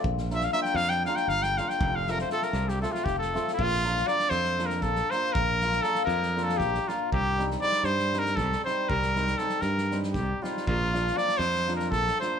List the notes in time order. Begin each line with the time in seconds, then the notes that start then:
0.04 A#1, kick
0.18 snare
0.30 A#3 D4 F4 A#4 E5, snare
0.41 F5, snare
0.53 A#3 D4 F4 A#4 E5, snare
0.62 G5, snare
0.74 F2 F5, snare
0.89 G5, snare
1.05 A#3 D4 F4 A#4 F5, snare
1.16 G5, snare
1.28 G1 F5, snare
1.43 G5, snare
1.57 A#3 D4 F4 A#4 F5, snare
1.69 G5, snare
1.80 F1, kick
1.96 F5
2.07 A3 C4 F4 A4 A#4, snare
2.18 C5, snare
2.30 A3 C4 F4 A4, snare
2.42 A#4, snare
2.53 C2, snare
2.68 G4, snare
2.82 A3 C4 F4 A4, snare
2.92 F4, snare
3.04 F1 G4, kick, snare
3.19 A4, snare
3.34 A3 C4 F4 A4, snare
3.48 snare
3.54 F4
3.59 A#1, kick
3.84 A#3 D4 F4 A#4, snare
3.97 snare
4.07 A#3 D4 F4 A#4 D5, snare
4.19 snare
4.30 F2 C5, snare
4.44 snare
4.58 A#3 D4 F4 A#4, snare
4.66 A#4, snare
4.81 A#1 A4, kick, snare
4.96 snare
5.11 A#3 D4 F4 A#4 C5, snare
5.33 A#1 A#4, kick
5.61 A#3 D4 F4 A#4, snare
5.72 snare
5.82 A#3 D4 F4 A4 A#4, snare
5.95 snare
6.05 F2 A#4, snare
6.23 snare
6.36 A#3 D4 F4 A#4, snare
6.44 A4
6.49 snare
6.57 A#1 G4, kick, snare
6.74 snare
6.88 A#3 D4 F4 A#4, snare
7.12 C2 G4, kick
7.38 G3 C4 D#4 G4, snare
7.50 snare
7.61 G3 C4 D#4 G4 D5, snare
7.72 snare
7.83 G2 C5, snare
7.99 snare
8.13 G3 C4 D#4 G4, snare
8.19 A#4
8.26 snare
8.36 C2 A4, kick, snare
8.52 snare
8.65 G3 C4 D#4 G4 C5, snare
8.89 C2 A#4, kick
9.02 snare
9.16 G3 C4 D#4 G4, snare
9.27 snare
9.38 G3 C4 D#4 G4 A4, snare
9.49 snare
9.61 G2 A#4, snare
9.78 snare
9.91 G3 C4 D#4 G4, snare
10.03 snare
10.13 C2 G4, kick, snare
10.42 G3 C4 D#4 F4 G4, snare
10.57 snare
10.67 A#1 F4, kick
10.93 F3 A#3 D4 F4, snare
11.07 snare
11.15 F3 A#3 D4 F4 D5, snare
11.28 snare
11.38 F2 C5, snare
11.55 snare
11.67 F3 A#3 D4 F4, snare
11.76 A#4, snare
11.91 A#1 A4, kick, snare
12.07 snare
12.21 F3 A#3 D4 F4 C5, snare